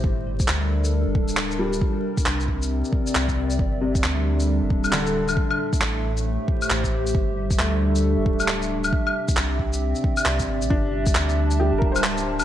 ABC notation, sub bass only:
X:1
M:4/4
L:1/16
Q:"Swing 16ths" 1/4=135
K:Gdor
V:1 name="Sub bass" clef=bass
G,,,4 D,,4- D,, G,,, D,,,6 | z4 C,,4- C,, z3 C,,4 | G,,,4 D,,4- D,, G,,, D,,,6 | z4 A,,,4- A,,, z3 A,,,4 |
G,,,4 D,,4- D,, G,,, D,,,6 | z4 C,,4- C,, z3 C,,2 G,,, B,,, | G,,,4 D,,4- D,, G,,, D,,,6 |]